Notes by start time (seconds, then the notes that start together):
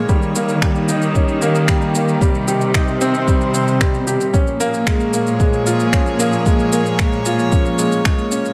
Already playing: G#3 A#3 C#4 F4 C#5
0.08 D#3 G3, kick, shaker
0.20 G4, shaker
0.35 A#3, shaker
0.49 shaker
0.62 G3, finger snap, kick, shaker
0.75 shaker
0.88 D#4, shaker
1.02 shaker
1.15 C#4, kick, shaker
1.28 shaker
1.42 A#3, shaker
1.55 shaker
1.68 G3, finger snap, kick, shaker
1.82 shaker
1.95 A#3, shaker
2.08 shaker
2.21 C3 G3, kick, shaker
2.35 C4, shaker
2.48 G4, shaker
2.61 shaker
2.74 D#4, finger snap, kick, shaker
2.82 C5
2.88 shaker
3.01 C4, shaker
3.14 shaker
3.28 G3, kick, shaker
3.41 shaker
3.54 C4, shaker
3.68 shaker
3.80 G3, finger snap, kick, shaker
3.94 shaker
4.07 G4, shaker
4.21 shaker
4.33 A#2 F3 C#4, kick, shaker
4.47 A#3, shaker
4.60 A#3 G#4, shaker
4.74 shaker
4.87 G#3, finger snap, kick, shaker
4.95 C#5
5.00 shaker
5.13 A#3, shaker
5.27 shaker
5.40 G#3, kick, shaker
5.53 shaker
5.66 F4, shaker
5.80 shaker
5.93 C#4, finger snap, kick, shaker
6.06 shaker
6.19 A#3, shaker
6.33 shaker
6.46 G#3, kick, shaker
6.59 shaker
6.72 A#3, shaker
6.86 shaker
6.99 G#3, finger snap, kick, shaker
7.12 shaker
7.25 F4, shaker
7.39 shaker
7.52 C#4, kick, shaker
7.65 shaker
7.78 G#3, shaker
7.92 shaker
8.05 G#3, finger snap, kick, shaker
8.18 shaker
8.31 C#4, shaker
8.45 shaker